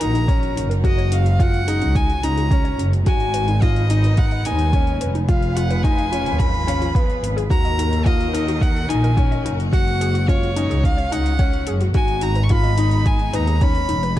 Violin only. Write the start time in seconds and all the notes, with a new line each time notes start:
0.00 A#5
0.86 D#5
1.13 F5
1.41 F#5
1.96 G#5
2.23 A#5
3.06 G#5
3.62 D#5
4.18 F#5
4.46 G#5
5.29 F5
5.55 F#5
5.82 G#5
6.39 B5
7.50 A#5
8.06 D#5
8.61 F#5
8.89 G#5
9.73 F#5
10.29 C#5
10.84 F5
11.12 F#5
11.95 G#5
12.23 A#5
12.44 C#6
12.51 B5
13.07 G#5
13.35 A#5
13.62 B5